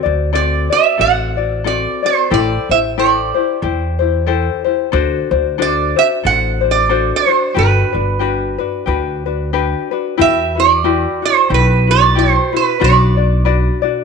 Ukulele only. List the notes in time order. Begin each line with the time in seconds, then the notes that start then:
0.03 C4 F#4 D5
0.33 C4 F#4 A4 D5
0.70 C4 F#4 D5
0.98 C4 F#4 A4 D5
1.37 C4 F#4 D5
1.64 C4 F#4 A4 D5
2.03 C4 F#4 D5
2.30 E4 G4 A4 C5
2.70 E4 G4 C5
2.98 E4 G4 A4 C5
3.34 E4 G4 C5
3.62 E4 G4 A4 C5
3.99 E4 G4 C5
4.26 E4 G4 A4 C5
4.64 E4 G4 C5
4.92 D4 F#4 A4 C5
5.31 D4 F#4 C5
5.58 D4 F#4 A4 C5
5.96 D4 F#4 C5
6.23 D4 F#4 A4 C5
6.61 D4 F#4 C5
6.89 D4 F#4 A4 C5
7.26 D4 F#4 C5
7.54 D4 F#4 G4 B4
7.93 D4 F#4 B4
8.19 D4 F#4 G4 B4
8.58 D4 F#4 B4
8.86 D4 F#4 G4 B4
9.26 D4 F#4 B4
9.53 D4 F#4 G4 B4
9.91 D4 F#4 B4
10.17 E4 F#4 G4 B4
10.55 E4 F#4 B4
10.84 E4 F#4 G4 B4
11.22 E4 F#4
11.49 E4 F#4 G4 B4
11.87 E4 F#4 B4
12.15 E4 F#4 G4
12.52 E4 F#4 B4
12.80 D4 F#4 B4 D5
13.17 D4 F#4 D5
13.45 D4 F#4 B4 D5
13.82 D4 F#4 D5